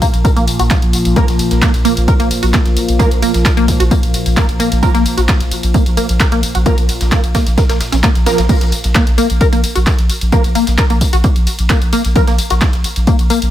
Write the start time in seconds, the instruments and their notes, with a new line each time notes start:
Already playing: synth drone A#2 F3
0.02 synth arpeggio sound A#3, kick, closed hi-hat, open hi-hat, ride, tambourine
0.14 sub bass A#1, closed hi-hat, ride, tambourine
0.25 synth arpeggio sound A#4, kick, closed hi-hat, ride, tambourine
0.36 sub bass A#1, synth arpeggio sound A#3, closed hi-hat, ride, tambourine
0.48 closed hi-hat, open hi-hat, ride, tambourine
0.59 sub bass A#1, synth arpeggio sound F#4, closed hi-hat, ride, tambourine
0.70 synth arpeggio sound A#3, kick, snare, clap, closed hi-hat, ride, tambourine
0.82 sub bass A#1, closed hi-hat, ride
0.93 closed hi-hat, open hi-hat, ride, tambourine
1.05 sub bass A#1, closed hi-hat, ride, tambourine
1.16 synth stab F3 A#3 A#4, synth arpeggio sound A#3, kick, closed hi-hat, ride, tambourine
1.28 sub bass A#1, snare, closed hi-hat, ride, tambourine
1.39 closed hi-hat, open hi-hat, ride, tambourine
1.51 sub bass A#1, snare, closed hi-hat, ride, tambourine
1.62 synth arpeggio sound A#3, kick, snare, clap, closed hi-hat, ride, tambourine
1.74 sub bass A#1, snare, closed hi-hat, ride, tambourine
1.85 synth arpeggio sound A#3, closed hi-hat, open hi-hat, ride, tambourine
1.97 sub bass A#1, closed hi-hat, ride, tambourine
2.08 synth arpeggio sound A#4, kick, closed hi-hat, ride, tambourine
2.20 sub bass A#1, synth arpeggio sound A#3, closed hi-hat, ride, tambourine
2.31 closed hi-hat, open hi-hat, ride, tambourine
2.43 sub bass A#1, synth arpeggio sound F#4, closed hi-hat, ride, tambourine
2.53 synth arpeggio sound A#3, kick, snare, clap, closed hi-hat, ride, tambourine
2.66 sub bass A#1, snare, closed hi-hat, ride
2.77 closed hi-hat, open hi-hat, ride, tambourine
2.88 sub bass A#1, closed hi-hat, ride, tambourine
2.99 synth stab F3 A#3 A#4, synth arpeggio sound A#3, kick, closed hi-hat, ride, tambourine
3.11 sub bass A#1, closed hi-hat, ride, tambourine
3.22 synth arpeggio sound A#3, closed hi-hat, open hi-hat, ride, tambourine
3.34 sub bass A#1, snare, closed hi-hat, ride, tambourine
3.45 synth arpeggio sound A#4, kick, snare, clap, closed hi-hat, ride, tambourine
3.57 sub bass A#1, synth arpeggio sound A#3, closed hi-hat, ride, tambourine
3.68 kick, closed hi-hat, open hi-hat, ride, tambourine
3.80 sub bass A#1, synth arpeggio sound F#4, closed hi-hat, ride, tambourine
3.91 synth arpeggio sound A#3, kick, closed hi-hat, ride, tambourine
4.03 sub bass A#1, closed hi-hat, ride, tambourine
4.14 closed hi-hat, open hi-hat, ride, tambourine
4.26 sub bass A#1, closed hi-hat, ride, tambourine
4.37 synth arpeggio sound A#3, kick, snare, clap, closed hi-hat, ride, tambourine
4.49 sub bass A#1, closed hi-hat, ride
4.60 synth arpeggio sound A#3, closed hi-hat, open hi-hat, ride, tambourine
4.72 sub bass A#1, closed hi-hat, ride, tambourine
4.83 synth stab F3 A#3 A#4, synth arpeggio sound A#4, kick, closed hi-hat, ride, tambourine
4.94 sub bass A#1, synth arpeggio sound A#3, snare, closed hi-hat, ride, tambourine
5.06 closed hi-hat, open hi-hat, ride, tambourine
5.17 sub bass A#1, synth arpeggio sound F#4, snare, closed hi-hat, ride, tambourine
5.28 synth arpeggio sound A#3, kick, snare, clap, closed hi-hat, ride, tambourine
5.40 sub bass A#1, snare, closed hi-hat, ride, tambourine
5.51 closed hi-hat, open hi-hat, ride, tambourine
5.63 sub bass A#1, closed hi-hat, ride, tambourine
5.74 synth arpeggio sound A#3, kick, closed hi-hat, ride, tambourine
5.86 sub bass A#1, closed hi-hat, ride, tambourine
5.97 synth arpeggio sound A#3, closed hi-hat, open hi-hat, ride, tambourine
6.09 sub bass A#1, closed hi-hat, ride, tambourine
6.20 synth arpeggio sound A#4, kick, snare, clap, closed hi-hat, ride, tambourine
6.32 sub bass A#1, synth arpeggio sound A#3, snare, closed hi-hat, ride
6.43 closed hi-hat, open hi-hat, ride, tambourine
6.55 sub bass A#1, synth arpeggio sound F#4, closed hi-hat, ride, tambourine
6.66 synth stab F3 A#3 A#4, synth arpeggio sound A#3, kick, closed hi-hat, ride, tambourine
6.78 sub bass A#1, closed hi-hat, ride, tambourine
6.89 closed hi-hat, open hi-hat, ride, tambourine
7.01 sub bass A#1, snare, closed hi-hat, ride, tambourine
7.12 synth arpeggio sound A#3, kick, snare, clap, closed hi-hat, ride, tambourine
7.24 sub bass A#1, closed hi-hat, ride, tambourine
7.35 synth arpeggio sound A#3, kick, snare, closed hi-hat, open hi-hat, ride, tambourine
7.47 sub bass A#1, snare, closed hi-hat, ride, tambourine
7.58 synth arpeggio sound A#4, kick, snare, closed hi-hat, ride, tambourine
7.69 sub bass A#1, synth arpeggio sound A#3, snare, closed hi-hat, ride, tambourine
7.80 snare, closed hi-hat, open hi-hat, ride, tambourine
7.92 sub bass A#1, synth arpeggio sound C#4, snare, closed hi-hat, ride, tambourine
8.03 synth arpeggio sound A#3, kick, snare, clap, closed hi-hat, ride, tambourine
8.15 sub bass A#1, snare, closed hi-hat, ride, tambourine
8.26 synth stab F3 A#3 A#4, snare, closed hi-hat, open hi-hat, ride, tambourine
8.38 sub bass A#1, snare, closed hi-hat, ride, tambourine
8.49 synth stab F3 A#3 A#4, synth arpeggio sound A#3, kick, closed hi-hat, crash, ride, tambourine
8.61 sub bass A#1, snare, closed hi-hat, ride, tambourine
8.72 closed hi-hat, open hi-hat, ride, tambourine
8.84 sub bass A#1, snare, closed hi-hat, ride, tambourine
8.95 synth arpeggio sound A#3, kick, snare, clap, closed hi-hat, ride, tambourine
9.07 sub bass A#1, snare, closed hi-hat, ride
9.18 synth arpeggio sound A#3, closed hi-hat, open hi-hat, ride, tambourine
9.30 sub bass A#1, closed hi-hat, ride, tambourine
9.41 synth arpeggio sound A#4, kick, closed hi-hat, ride, tambourine
9.53 sub bass A#1, synth arpeggio sound A#3, closed hi-hat, ride, tambourine
9.64 closed hi-hat, open hi-hat, ride, tambourine
9.75 sub bass A#1, synth arpeggio sound F#4, closed hi-hat, ride, tambourine
9.87 synth arpeggio sound A#3, kick, snare, clap, closed hi-hat, ride, tambourine
9.98 sub bass A#1, snare, closed hi-hat, ride
10.09 closed hi-hat, open hi-hat, ride, tambourine
10.21 sub bass A#1, closed hi-hat, ride, tambourine
10.32 synth stab F3 A#3 A#4, synth arpeggio sound A#3, kick, closed hi-hat, ride, tambourine
10.44 sub bass A#1, closed hi-hat, ride, tambourine
10.55 synth arpeggio sound A#3, closed hi-hat, open hi-hat, ride, tambourine
10.67 sub bass A#1, snare, closed hi-hat, ride, tambourine
10.78 synth arpeggio sound A#4, kick, snare, clap, closed hi-hat, ride, tambourine
10.90 sub bass A#1, synth arpeggio sound A#3, closed hi-hat, ride, tambourine
11.01 kick, closed hi-hat, open hi-hat, ride, tambourine
11.13 sub bass A#1, synth arpeggio sound F#4, closed hi-hat, ride, tambourine
11.24 synth arpeggio sound A#3, kick, closed hi-hat, ride, tambourine
11.36 sub bass A#1, closed hi-hat, ride, tambourine
11.47 closed hi-hat, open hi-hat, ride, tambourine
11.59 sub bass A#1, closed hi-hat, ride, tambourine
11.70 synth arpeggio sound A#3, kick, snare, clap, closed hi-hat, ride, tambourine
11.82 sub bass A#1, closed hi-hat, ride, tambourine
11.93 synth arpeggio sound A#3, closed hi-hat, open hi-hat, ride, tambourine
12.04 sub bass A#1, closed hi-hat, ride, tambourine
12.16 synth stab F3 A#3 A#4, synth arpeggio sound A#4, kick, closed hi-hat, ride, tambourine
12.27 sub bass A#1, synth arpeggio sound A#3, snare, closed hi-hat, ride, tambourine
12.38 closed hi-hat, open hi-hat, ride, tambourine
12.50 sub bass A#1, synth arpeggio sound F#4, snare, closed hi-hat, ride, tambourine
12.61 synth arpeggio sound A#3, kick, snare, clap, closed hi-hat, ride, tambourine
12.73 sub bass A#1, snare, closed hi-hat, ride
12.84 closed hi-hat, open hi-hat, ride, tambourine
12.96 sub bass A#1, closed hi-hat, ride, tambourine
13.07 synth arpeggio sound A#3, kick, closed hi-hat, ride, tambourine
13.19 sub bass A#1, closed hi-hat, ride, tambourine
13.30 synth arpeggio sound A#3, closed hi-hat, open hi-hat, ride, tambourine
13.42 sub bass A#1, closed hi-hat, ride, tambourine